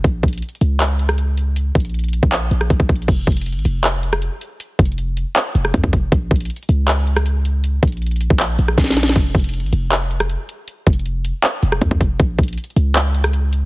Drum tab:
CC |------------------------------------------------------------------------------------------------|------------------------------------------------------------------------------------------------|x-----------------------------------------------------------------------------------------------|------------------------------------------------------------------------------------------------|
HH |x-----------x--x--x--x--x---x---x---x-----------x-----------x-----x-----x-----------x-----------|x-----------x--x--x--x--x--x--x--x--x-----------x-----------x-----------x-----------x---x---x---|x-----------x--x--x--x--x---x---x---x-----------x-----------x-----x-----x-----------x-----------|x-----------x---x---x---x-----------x-----------x-----------x-----------x-----------x-----------|
CP |------------------------------------------------x-----------------------------------------------|------------------------------------------------x-----------------------------------------------|------------------------------------------------x-----------------------------------------------|------------------------------------------------x-----------------------------------------------|
SD |------------------------------------------------------------------r-----------------------------|------------------------------------------------------------------r-----------------------------|------------------------------------------------------------------r-----------------------------|------------------------------------------------------------------r-----------------------------|
BD |o-----------o-----------------------------------------------------------------------------------|------------o-----------------------------o-----------------------------o-----o-----o-----------|o-----------o-----------------------------------------------------------------------------------|------------o-----------------------------------------------------------o-----o-----o-----------|

CC |------------------------------------------------------------------------------------------------|------------------------------------------------------------------------------------------------|x-----------------------------------------------------------------------------------------------|------------------------------------------------------------------------------------------------|
HH |x-----------x--x--x--x--x---x---x---x-----------x-----------x-----x-----x-----------x-----------|x-----------x--x--x--x--x--x--x--x--x-----------x-----------x-----------x-----------x---x---x---|------------x--x--x--x--x---x---x---x-----------x-----------x-----x-----x-----------x-----------|x-----------x---x---x---x-----------x-----------x-----------x-----------x-----------x-----------|
CP |------------------------------------------------x-----------------------------------------------|------------------------------------------------x-----------------------------------------------|------------------------------------------------x-----------------------------------------------|------------------------------------------------x-----------------------------------------------|
SD |------------------------------------------------------------------r-----------------------------|------------------------------------------------------------------r-----o---o---o---o---o---o---|------------------------------------------------------------------r-----------------------------|------------------------------------------------------------------r-----------------------------|
BD |o-----------o-----------------------------------------------------------------------------------|------------o-----------------------------o-----------------------------o-----------------------|o-----------o-----------------------------------------------------------------------------------|------------o-----------------------------------------------------------o-----o-----o-----------|

CC |------------------------------------------------------------------------------------------------|
HH |x-----------x--x--x--x--x---x---x---x-----------x-----------x-----x-----x-----------x-----------|
CP |------------------------------------------------x-----------------------------------------------|
SD |------------------------------------------------------------------r-----------------------------|
BD |o-----------o-----------------------------------------------------------------------------------|